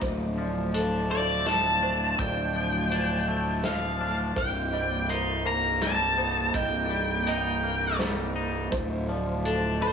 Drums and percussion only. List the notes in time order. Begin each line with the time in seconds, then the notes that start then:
0.02 kick, closed hi-hat
0.74 closed hi-hat
1.46 snare, closed hi-hat
2.19 kick, closed hi-hat
2.91 closed hi-hat
3.64 snare, closed hi-hat
4.36 kick, closed hi-hat
5.09 closed hi-hat
5.82 snare, closed hi-hat
6.54 kick, closed hi-hat
7.27 closed hi-hat
8.00 snare, closed hi-hat
8.72 kick, closed hi-hat
9.45 closed hi-hat